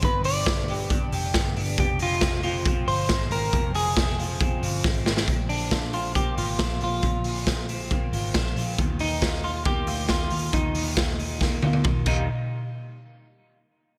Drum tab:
CC |----------------|----------------|----------------|----------------|
HH |x-o-x-o-x-o-x-o-|x-o-x-o-x-o-x-o-|x-o-x-o-x-o-----|x-o-x-o-x-o-x-o-|
SD |----o-------o---|----o-------o---|----o-------o-oo|----o-------o---|
T1 |----------------|----------------|----------------|----------------|
T2 |----------------|----------------|----------------|----------------|
BD |o---o---o---o---|o---o---o---o---|o---o---o---o---|o---o---o---o---|

CC |----------------|----------------|--------------x-|----------------|
HH |x-o-x-o-x-o-x-o-|x-o-x-o-x-o-x-o-|x-o-x-o---------|----------------|
SD |----o-------o---|----o-------o---|----o---o-------|----------------|
T1 |----------------|----------------|----------oo----|----------------|
T2 |----------------|----------------|------------o---|----------------|
BD |o---o---o---o---|o---o---o---o---|o---o---o---o-o-|----------------|